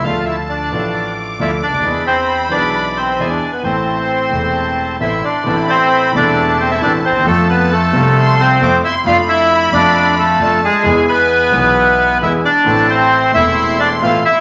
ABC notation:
X:1
M:4/4
L:1/16
Q:1/4=133
K:Am
V:1 name="Violin section"
a8 d'8 | b12 ^g4 | a4 c'4 a4 c'4 | b8 a8 |
a8 c'4 d'2 c'2 | b12 a4 | ^g8 g6 z2 | a4 c'12 |]
V:2 name="Bandoneon"
[Ff]2 [Ee]2 [Dd]6 z2 [Ee]2 [Dd]2- | [Dd]2 [Cc]4 [Dd]4 [Cc]3 [Dd]2 [B,B] | [Cc]12 [Ee]2 [Dd]2- | [Dd]2 [Cc]4 [Dd]4 [Cc] [Ee] [Dd]2 [Cc]2 |
[A,A]2 [B,B]2 [A,A]6 [Cc]4 [Ee]2 | [Ff]2 [Ee]4 [Dd]4 [A,A]4 [^G,^G]2- | [^G,^G]2 [B,B]8- [B,B]2 [Ee]2 [Dd]2- | [Dd]2 [Cc]4 [Ee]4 [Dd]2 [Ff]2 [Ee]2 |]
V:3 name="Bandoneon"
[A,DF]6 [A,DF]6 [A,DF]2 z2 | [^G,DE]6 [G,DE]6 [G,DE]2 z2 | [A,CE]6 [A,CE]6 [A,CE]2 z2 | [A,CE]6 [A,CE]6 [A,CE]2 z2 |
[A,CF]6 [A,CF]6 [A,CF]2 z2 | [F,A,D]6 [A,DF]6 [A,DF]2 z2 | [^G,B,E]6 [G,B,E]6 [G,B,E]2 z2 | [A,CE]6 [A,CE]6 [A,CE]2 z2 |]
V:4 name="Grand piano" clef=bass
[D,,D,F,A,DA]6 [A,,,A,,F,A,DA]6 [D,,D,F,A,DA]2 z/2 ^C,,/2 D,,/2 ^D,,/2 | [E,,E,^G,D^G]6 [B,,,B,,E,B,DG]6 [E,,E,B,DG]2 z2 | [A,,,A,,E,A,CA]6 [E,,,E,,E,A,CA]6 [A,,,A,,E,A,CA]2 z2 | [A,,,A,,E,A,CA]6 [E,,,E,,E,A,CA]6 [A,,,A,,E,A,CA]2 z/2 D,,/2 ^D,,/2 E,,/2 |
[F,,F,A,CA]6 [C,,C,F,A,CA]6 [F,,F,A,CA]2 z2 | [F,,F,A,DA]6 [F,,F,A,DA]6 [F,,F,A,DA]2 z2 | [E,,E,^G,B,^G]6 [B,,,B,,E,G,B,G]6 [E,,E,G,B,G]2 z2 | [A,,,A,,E,A,CA]6 [E,,,E,,E,A,CA]6 [A,,,A,,E,A,CA]2 z2 |]
V:5 name="Upright bass" clef=bass
D,,4- D,,3/2 z/2 A,,,4- A,,,3/2 z/2 D,,3/2 z ^C,,/2 D,,/2 ^D,,/2 | E,,4- E,,3/2 z/2 B,,,4- B,,,3/2 z/2 E,,3/2 z2 z/2 | A,,,4- A,,,3/2 z/2 E,,,4- E,,,3/2 z/2 A,,,3/2 z2 z/2 | A,,,4- A,,,3/2 z/2 E,,,4- E,,,3/2 z/2 A,,,3/2 z D,,/2 ^D,,/2 E,,/2 |
F,,4- F,,3/2 z/2 C,,4- C,,3/2 z/2 F,,3/2 z2 z/2 | F,,4- F,,3/2 z/2 F,,4- F,,3/2 z/2 F,,3/2 z2 z/2 | E,,4- E,,3/2 z/2 B,,,4- B,,,3/2 z/2 E,,3/2 z2 z/2 | A,,,4- A,,,3/2 z/2 E,,,4- E,,,3/2 z/2 A,,,3/2 z2 z/2 |]